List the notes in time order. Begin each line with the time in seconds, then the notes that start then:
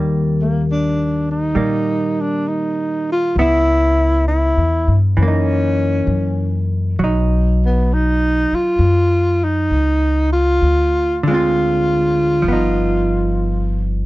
Already playing: D#2 D#3 G3 A#3
0.41 A#3
0.71 D4
1.31 D#4
1.55 A#2 G3 A#3
2.21 D4
2.48 D#4
3.12 F4
3.36 C#2 B3 E4
3.41 E4
4.28 E4
4.57 E2
4.88 G2
5.17 F#2 E3 C#4
5.23 A#3
5.28 D#4
6.07 F#2
6.99 B1 F#3
7.04 D#4
7.65 B3
7.94 D#4
8.52 F4, muted upright bass stroke
8.79 F#2
9.44 D#4
9.70 C#2
10.33 F4
10.61 D2
11.23 D3
11.27 G#3 C4 F4
11.34 F4
12.42 G1 F3
12.48 B3
12.53 D#4